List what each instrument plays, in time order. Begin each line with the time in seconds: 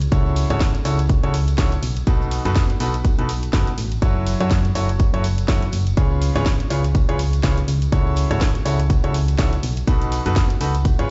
0.02 closed hi-hat, tambourine, shaker
0.11 fm bass C#2, grand piano C#3 E4 F#4 A4 C#5, kick, closed hi-hat, tambourine, shaker
0.26 tambourine
0.36 open hi-hat, tambourine, shaker
0.50 fm bass G#1, grand piano C#3 E4 F#4 A4 C#5, closed hi-hat, tambourine, shaker
0.60 kick, snare, closed hi-hat, tambourine, shaker
0.74 closed hi-hat, tambourine
0.85 fm bass C#2, grand piano C#3 E4 F#4 A4 C#5, open hi-hat, tambourine, shaker
0.99 closed hi-hat, tambourine, shaker
1.09 kick, closed hi-hat, tambourine, shaker
1.23 fm bass C#2, grand piano C#3 E4 F#4 A4 C#5, closed hi-hat, tambourine
1.34 open hi-hat, tambourine, shaker
1.48 closed hi-hat, tambourine, shaker
1.58 fm bass C#2, grand piano E4 F#4 A4 C#5, kick, snare, closed hi-hat, tambourine, shaker
1.72 closed hi-hat, tambourine, shaker
1.82 fm bass B1, open hi-hat, tambourine, shaker
1.97 closed hi-hat, tambourine, shaker
2.07 fm bass B1, grand piano B2 D#4 F#4 A4 B4, kick, closed hi-hat, tambourine, shaker
2.21 tambourine, shaker
2.31 open hi-hat, tambourine, shaker
2.45 fm bass F#1, grand piano B2 D#4 F#4 A4 B4, snare, closed hi-hat, tambourine, shaker
2.56 kick, snare, closed hi-hat, tambourine, shaker
2.70 closed hi-hat, tambourine
2.80 fm bass B1, grand piano B2 D#4 F#4 A4 B4, open hi-hat, tambourine, shaker
2.94 closed hi-hat, tambourine, shaker
3.05 kick, closed hi-hat, tambourine, shaker
3.19 fm bass B1, grand piano B2 D#4 F#4 A4 B4, closed hi-hat, tambourine
3.29 open hi-hat, tambourine, shaker
3.43 closed hi-hat, tambourine, shaker
3.53 fm bass F#1, grand piano B2 D#4 F#4 A4 B4, kick, snare, closed hi-hat, tambourine, shaker
3.67 closed hi-hat, tambourine, shaker
3.78 fm bass A1, open hi-hat, tambourine, shaker
3.92 closed hi-hat, tambourine, shaker
4.02 fm bass F#1, grand piano F#3 E4 F#4 A4 C#5, kick, closed hi-hat, tambourine, shaker
4.16 tambourine
4.27 open hi-hat, tambourine, shaker
4.40 fm bass F#2, grand piano F#3 E4 F#4 A4 C#5, closed hi-hat, tambourine, shaker
4.51 kick, snare, closed hi-hat, tambourine, shaker
4.65 closed hi-hat, tambourine
4.75 fm bass F#1, grand piano F#3 E4 F#4 A4 C#5, open hi-hat, tambourine, shaker
4.89 closed hi-hat, shaker
4.99 kick, closed hi-hat, tambourine, shaker
5.13 fm bass F#1, grand piano F#3 E4 F#4 A4 C#5, closed hi-hat, tambourine
5.24 open hi-hat, tambourine, shaker
5.38 closed hi-hat, tambourine, shaker
5.48 fm bass F#1, grand piano F#3 E4 F#4 A4 C#5, kick, snare, closed hi-hat, tambourine, shaker
5.62 closed hi-hat, tambourine, shaker
5.72 fm bass F#1, open hi-hat, tambourine, shaker
5.86 closed hi-hat, tambourine, shaker
5.97 fm bass C#2, grand piano C#3 F4 G#4 B4 C#5, kick, closed hi-hat, tambourine, shaker
6.11 tambourine
6.22 open hi-hat, tambourine, shaker
6.35 fm bass G#1, grand piano C#3 F4 G#4 B4 C#5, snare, closed hi-hat, tambourine, shaker
6.46 kick, snare, closed hi-hat, tambourine, shaker
6.60 closed hi-hat, tambourine
6.70 fm bass C#2, grand piano C#3 F4 G#4 B4 C#5, open hi-hat, tambourine, shaker
6.84 closed hi-hat, tambourine, shaker
6.95 kick, closed hi-hat, tambourine, shaker
7.09 fm bass C#2, grand piano C#3 F4 G#4 B4 C#5, closed hi-hat, tambourine
7.19 open hi-hat, tambourine, shaker
7.33 closed hi-hat, tambourine, shaker
7.43 fm bass C#2, grand piano C#3 F4 G#4 B4 C#5, kick, snare, closed hi-hat, tambourine, shaker
7.58 closed hi-hat, tambourine, shaker
7.68 fm bass C#2, open hi-hat, tambourine, shaker
7.82 closed hi-hat, tambourine, shaker
7.92 fm bass C#2, grand piano C#3 E4 F#4 A4 C#5, kick, closed hi-hat, tambourine, shaker
8.07 tambourine
8.16 open hi-hat, tambourine, shaker
8.31 fm bass G#1, grand piano C#3 E4 F#4 A4 C#5, closed hi-hat, tambourine, shaker
8.41 kick, snare, closed hi-hat, tambourine, shaker
8.55 closed hi-hat, tambourine
8.65 fm bass C#2, grand piano C#3 E4 F#4 A4 C#5, open hi-hat, tambourine, shaker
8.80 closed hi-hat, shaker
8.90 kick, closed hi-hat, tambourine, shaker
9.04 fm bass C#2, grand piano C#3 E4 F#4 A4 C#5, closed hi-hat, tambourine
9.14 open hi-hat, tambourine, shaker
9.28 closed hi-hat, tambourine, shaker
9.38 fm bass C#2, grand piano E4 F#4 A4 C#5, kick, snare, closed hi-hat, tambourine, shaker
9.53 closed hi-hat, tambourine, shaker
9.63 fm bass B1, open hi-hat, tambourine, shaker
9.77 closed hi-hat, tambourine, shaker
9.87 fm bass B1, grand piano B2 D#4 F#4 A4 B4, kick, closed hi-hat, tambourine, shaker
10.02 closed hi-hat, tambourine, shaker
10.12 open hi-hat, tambourine, shaker
10.25 fm bass F#1, grand piano B2 D#4 F#4 A4 B4, snare, closed hi-hat, tambourine, shaker
10.36 kick, snare, closed hi-hat, tambourine, shaker
10.50 closed hi-hat, tambourine
10.61 fm bass C#2, grand piano D#4 F#4 A4 B4, open hi-hat, tambourine, shaker
10.74 closed hi-hat, tambourine, shaker
10.85 kick, closed hi-hat, tambourine, shaker
10.99 fm bass G#1, grand piano C#3 F4 G#4 B4 C#5, closed hi-hat, tambourine